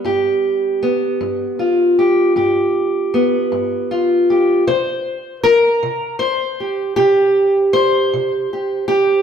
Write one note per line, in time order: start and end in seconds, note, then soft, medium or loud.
0.00 0.82 G3 soft
0.00 0.81 B3 soft
0.04 0.74 G2 medium
0.04 1.98 G4 medium
0.83 3.13 B3 medium
1.21 1.90 G2 medium
1.59 3.90 F4 medium
1.99 2.36 G4 medium
2.36 3.05 G2 medium
2.36 4.30 G4 medium
3.14 4.63 B3 medium
3.52 4.21 G2 medium
3.91 4.63 F4 medium
4.30 4.67 G4 medium
4.67 5.36 C3 medium
4.67 5.43 C5 loud
5.43 6.19 A#4 loud
5.83 6.52 C3 medium
6.19 7.72 C5 medium
6.60 6.96 G4 soft
6.96 7.67 C3 medium
6.96 8.51 G4 medium
7.73 9.22 C5 loud
8.13 8.82 C3 medium
8.53 8.87 G4 soft
8.88 9.22 G4 medium